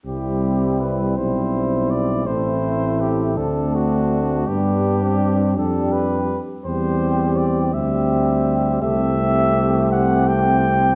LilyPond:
<<
  \new Staff \with { instrumentName = "Cornet" } { \time 6/8 \key c \major \tempo 4. = 55 g'4 b'8 c''4 d''8 | c''4 g'8 a'8 fis'4 | g'4. a'8 b'8 r8 | c''4 d''8 e''4. |
\key a \dorian e''4. fis''8 g''4 | }
  \new Staff \with { instrumentName = "Trumpet" } { \time 6/8 \key c \major e'4. e'4. | e'4. d'4. | d'4. g'4 r8 | g'4. g'4. |
\key a \dorian g'2. | }
  \new Staff \with { instrumentName = "French horn" } { \time 6/8 \key c \major c'4. c'4. | c'4. c'4. | b8. c'8. d'4 r8 | c'4. c'4. |
\key a \dorian c'2. | }
  \new Staff \with { instrumentName = "Trombone" } { \clef bass \time 6/8 \key c \major g4. g4. | a4. a4. | g4. g4 r8 | g4. g4. |
\key a \dorian a2. | }
  \new Staff \with { instrumentName = "Tuba" } { \clef bass \time 6/8 \key c \major c,4. b,,4. | a,,4. d,4. | g,4. f,4 r8 | e,4. d,4. |
\key a \dorian c,2. | }
>>